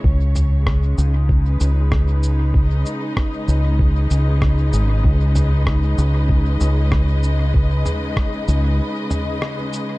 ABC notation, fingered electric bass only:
X:1
M:4/4
L:1/8
Q:"Swing 16ths" 1/4=96
K:G#m
V:1 name="Fingered electric bass" clef=bass
C,,3 C,,2 C,,3- | C,, z2 C,,2 C,,2 G,,, | C,,3 C,,2 C,,3- | C,, z2 C,, z4 |]